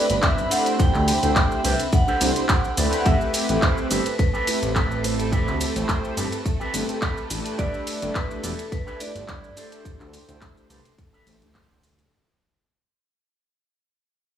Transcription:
Already playing: C4 D5 B5
0.09 G1 A3 D4 E4 G4 B4, muted clean electric guitar stroke, closed hi-hat, cabasa
0.22 D4 E4 G4 B4 E5, kick, clap, closed hi-hat, cabasa
0.38 cabasa
0.50 A3 D4 E4 G4 A4 C5 F#5, open hi-hat, ride, cabasa
0.66 closed hi-hat, cabasa
0.79 D2 G5, kick, closed hi-hat, cabasa
0.94 D2, clap, cabasa
1.08 open hi-hat, ride, cabasa
1.23 D2 A3 D4 E4 G4 C5, closed hi-hat, cabasa
1.36 kick, clap, closed hi-hat, cabasa
1.51 cabasa
1.64 C2 A3 D4 E4 G4 A4 B4 C5 E5, open hi-hat, ride, cabasa
1.80 closed hi-hat, cabasa
1.93 F#5, kick, closed hi-hat, cabasa
2.07 D4 G4 A4 C5, cabasa
2.21 C2 A3 D4 E4 G4 C5, open hi-hat, ride, cabasa
2.36 A3 D4 E4 G4 C5, muted clean electric guitar stroke, closed hi-hat, cabasa
2.48 D4 G4 A4 C5 G5, kick, clap, closed hi-hat, cabasa
2.64 cabasa
2.77 D2 A3 C4 E4 G4 B4 D5, open hi-hat, ride, cabasa
2.93 closed hi-hat, cabasa
3.00 F#5
3.05 A1 A3 C4 G4 A4 B4 E5, kick, closed hi-hat, cabasa
3.21 cabasa
3.34 open hi-hat, ride, cabasa
3.49 A1 A3 C4 E4 G4 B4, closed hi-hat, cabasa
3.62 C5, kick, clap, closed hi-hat, cabasa
3.78 cabasa
3.90 G1 A3 C4 E4 G4 A4 B4, open hi-hat, ride, cabasa
4.05 B4, closed hi-hat, cabasa
4.18 B4, kick, closed hi-hat, cabasa
4.33 C4 G4 A4 B4, cabasa
4.47 A3 C4 E4 G4 B4, open hi-hat, ride, cabasa
4.62 A1 A3 C4 E4 G4 B4, muted clean electric guitar stroke, closed hi-hat, cabasa
4.68 C5
4.75 C4 G4 A4 B4, kick, clap, closed hi-hat, cabasa
4.86 A4
4.91 B4, cabasa
5.03 A3 C4 E4 G4 A4 C5, open hi-hat, ride, cabasa
5.20 closed hi-hat, cabasa
5.31 C4 G4 A4 B4, kick, closed hi-hat, cabasa
5.48 D2, clap, cabasa
5.61 open hi-hat, ride, cabasa
5.75 A1 A3 C4 E4 G4 C5, closed hi-hat, cabasa
5.89 kick, clap, closed hi-hat, cabasa
6.05 cabasa
6.17 G1 A3 C4 E4 G4 A4 B4, open hi-hat, ride, cabasa
6.32 closed hi-hat, cabasa
6.46 kick, closed hi-hat, cabasa
6.60 C4 G4 A4 B4, cabasa
6.74 G1 A3 C4 E4 G4 B4, open hi-hat, ride, cabasa
6.88 A3 C4 E4 G4 B4, muted clean electric guitar stroke, closed hi-hat, cabasa
7.01 C4 G4 A4 B4, kick, clap, closed hi-hat, cabasa
7.17 cabasa
7.30 A1 A3 D4 E4 G4 B4, open hi-hat, ride, cabasa
7.46 closed hi-hat, cabasa
7.58 G1 D4 E4 G4 B4 D5, kick, closed hi-hat, cabasa
7.74 cabasa
7.87 open hi-hat, ride, cabasa
8.02 G1 A3 D4 E4 G4 B4, closed hi-hat, cabasa
8.15 B4, kick, clap, closed hi-hat, cabasa
8.31 cabasa
8.43 E1 A3 D4 E4 G4 A4 B4, open hi-hat, ride, cabasa
8.59 closed hi-hat, cabasa
8.72 B4, kick, closed hi-hat, cabasa
8.86 D4 E4 G4 B4, cabasa
9.00 A3 D4 E4 G4 B4 D5, open hi-hat, ride, cabasa
9.15 G1 A3 D4 E4 G4 B4, muted clean electric guitar stroke, closed hi-hat, cabasa
9.28 D4 E4 G4 B4, kick, clap, closed hi-hat, cabasa
9.44 cabasa
9.56 A3 D4 E4 G4 A4 C5, open hi-hat, ride, cabasa
9.72 closed hi-hat, cabasa
9.85 D2, kick, closed hi-hat, cabasa
10.00 D2, clap, cabasa
10.14 open hi-hat, ride, cabasa
10.28 D2 A3 D4 E4 G4 C5, closed hi-hat, cabasa
10.41 kick, clap, closed hi-hat, cabasa
10.57 cabasa
10.69 C2 A3 D4 E4 G4 A4 B4 C5, open hi-hat, ride, cabasa
10.85 closed hi-hat, cabasa
10.98 kick, closed hi-hat, cabasa
11.13 D4 G4 A4 B4, cabasa
11.26 A1 A3 D4 E4 G4 C5, open hi-hat, ride, cabasa
11.41 D2 A3 D4 E4 G4 C5, muted clean electric guitar stroke, closed hi-hat, cabasa
11.54 D4 G4 A4 C5, kick, clap, closed hi-hat, cabasa
11.71 cabasa
11.83 open hi-hat, ride, cabasa
11.99 closed hi-hat, cabasa

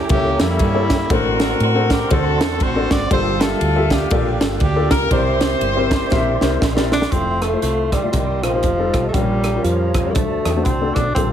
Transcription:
Already playing: C#4 E4 G4 A4 C#5 G5 A#5
0.09 C#2 A#3 C#4 E4 G4 A4 E5, kick, ride
0.39 F2 G3 A#3 C#4 E4 G4 A4 E5, snare, ride
0.59 G2, kick, ride
0.74 A#3 E4 G4 A4 C#5
0.90 kick, snare, ride
1.09 A1 A2 A#3 C4 D4 F#4 A4 A#4 C5 D5 F#5 C6, kick, ride
1.40 A#3 D4 F#4 A4 D5, snare, ride
1.60 A2 F#4, ride
1.74 A#3 D4 F#4 A4 C5
1.90 G4, kick, snare, ride
2.10 D2 A#3 C4 D4 F#4 A4 C5, kick, ride
2.40 E2 A#3 D4 F#4 A4 C5, snare, ride
2.60 A1 C5, kick, ride
2.75 A#3 D4 F#4 A4 D5
2.91 G#1 D5, kick, snare, ride
3.10 G1 G2 A#3 F4 G4 A4 C5 D5 F5 G5, kick, ride
3.40 A#3 D4 F4 G4 A4 E5, snare, ride
3.61 D2, ride
3.75 A#3 F4 G4 A4 E5
3.90 A#3 D4 G4, kick, snare, ride
4.10 A#1 A#3 F4 G4 A4 D5, kick, ride
4.40 G1 A#3 F4 G4 A4 D5, snare, ride
4.60 D2 G4, kick, ride
4.76 A#3 F4 G4 A4 D5
4.91 C#2 A#4, kick, snare, ride
5.10 C2 C3 C4 E4 G4 A#4 C5 D5 E5 C6, kick, ride
5.41 C4 E4 G4 A#4 D5, snare, ride
5.61 G1, ride
5.76 C4 E4 G4 A#4 C5
5.91 kick, snare, ride
6.11 A#1 C4 E4 G4 A#4 E5, kick, snare
6.41 C2 C4 E4 G4 A#4 C5, snare
6.62 A#1, kick, snare
6.76 C4 E4 G4 A#4 D5, snare
6.92 D4, snare
7.02 snare
7.12 F1 A3 C4 E4 F4 A4 C5 E5 F5 C6, kick, closed hi-hat
7.42 A3, cross-stick, closed hi-hat
7.52 A3 E4 F4 C5
7.62 C2 A3, closed hi-hat
7.92 G3, kick, cross-stick, closed hi-hat
8.02 A3 E4 F4 D5
8.12 C2 C3 G3 A#4 D#5 G5, kick, closed hi-hat
8.43 A#1 F3, cross-stick, closed hi-hat
8.53 A#3 D#4 G4 C5
8.63 F1 G4 D#5 F5 A5, kick, closed hi-hat
8.78 G3 D#4 F4 A4
8.94 B1, kick, cross-stick, closed hi-hat
9.09 A3
9.13 A#1 A#2 G3 C#4 F4 G4 A#4 C#5 A#5, kick, closed hi-hat
9.44 cross-stick, closed hi-hat
9.54 G3 C#4 F4 A#4
9.64 F2 F3, closed hi-hat
9.94 kick, cross-stick, closed hi-hat
10.05 G3 C#4 F4 C#5
10.10 A#3
10.14 D2 D3 A3 F#4 C5 D5 A5, kick, closed hi-hat
10.45 E2, cross-stick, closed hi-hat
10.56 A3 D4 F#4 C5
10.64 C2 C4, kick, closed hi-hat
10.81 A3 D4 F#4 A4
10.95 B1 D4, kick, cross-stick, closed hi-hat
11.15 A#1 A#2 G3 A#3 C4 F4 G4 A4 F5 A5, kick, closed hi-hat

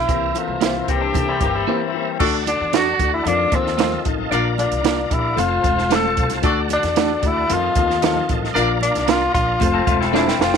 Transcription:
Already playing: E4
0.07 C2 E3 A#3 C4 G4 C5 E5 A#5, kick, closed hi-hat
0.35 E3 A#3 C4 F4 A4, closed hi-hat, muted conga
0.48 C2
0.61 E3 A#3 C4 E4 G4 C5, snare, closed hi-hat, high conga
0.65 F4
0.88 C2 E3 A#3 C4 G4, kick, closed hi-hat
1.01 D4
1.14 C3 E3 A#3 C4 A4, kick, closed hi-hat, muted conga, low conga
1.29 G3 E4
1.41 G1 E3 A#3 C4 G4, kick, closed hi-hat, muted conga, low conga
1.55 G3 E4
1.67 E3 A#3 C4 E4 G4 C5
1.94 E3 A#3 C4 G4
2.19 D2 A3 D4 F#4 A4 D5 F#5 A5, kick, crash
2.46 A3 D4 F#4, closed hi-hat, muted conga
2.60 E2
2.73 A3 D4 F#4 A4 D5, snare, closed hi-hat, high conga
2.99 D2 A3 D4 F#4, kick, closed hi-hat
3.14 E4
3.25 F2 D#3 F3 A3 C4 D4 F4 D#5 F5, closed hi-hat, muted conga
3.52 D#2 D#3 F3 A3 C4 F4, kick, closed hi-hat, muted conga, low conga
3.67 snare
3.78 D#3 F3 A3 C4 D#4 F4 C5, snare, closed hi-hat, high conga
3.92 high conga
4.04 A1 D#3 F3 A3 C4 D#4, kick, closed hi-hat
4.18 high conga
4.30 A#1 A#3 D4 F4 A#4 D5 A#5, closed hi-hat
4.57 A#3 D4 F4, closed hi-hat, muted conga
4.71 C2, closed hi-hat
4.83 A#3 D4 F4 A#4, snare, closed hi-hat, high conga
5.10 A#1 A#3 D4 E4 G4, kick, closed hi-hat
5.36 F1 A3 C4 F4 C5 F5 A5, closed hi-hat, muted conga, low conga
5.63 E1 A3 C4 F4, kick, closed hi-hat, muted conga
5.78 snare
5.89 A3 C4 F4 A4, snare, closed hi-hat, high conga
5.95 A4
6.05 high conga
6.16 C2 A3 C4 F4, kick, closed hi-hat
6.30 snare, closed hi-hat, high conga
6.42 D2 A3 D4 F#4 A4 D5 F#5, kick, closed hi-hat
6.69 A3 D4 F#4, closed hi-hat, muted conga
6.73 D4
6.83 E2, snare, closed hi-hat
6.96 A3 D4 F#4 A4, snare, closed hi-hat, high conga
7.21 D2 A3 D4 F#4, kick, closed hi-hat
7.27 E4
7.48 F2 D#3 F3 A3 C4 F4 D#5 F5, closed hi-hat, muted conga
7.54 F4
7.75 D#2 D#3 F3 A3 C4 F4, kick, closed hi-hat, low conga
7.90 snare
8.02 D#3 F3 A3 C4 D#4 F4 A4, snare, closed hi-hat, high conga
8.16 high conga
8.28 A1 D#3 F3 A3 C4 F4, kick, closed hi-hat
8.42 snare, high conga
8.54 A#1 A#3 D4 F4 A#4 D5 A#5, closed hi-hat
8.81 A#3 D4 F4, closed hi-hat, muted conga
8.95 C2, snare, closed hi-hat
9.07 A#3 D4 F4 A#4, snare, closed hi-hat, high conga
9.34 A#1 A#3 D4 F4, kick, closed hi-hat
9.59 F1 A3 C4 F4 C5 A5, kick, closed hi-hat, muted conga, low conga
9.74 C4 A4
9.86 E1 A3 C4 F4, kick, closed hi-hat, muted conga, low conga
10.01 G3 E4, snare
10.12 F3 A3 C4 D4 F4 A4 C5, snare, high conga
10.17 E4
10.27 E3 C4, snare, high conga
10.39 F1 A3 C4 F4, snare
10.54 snare

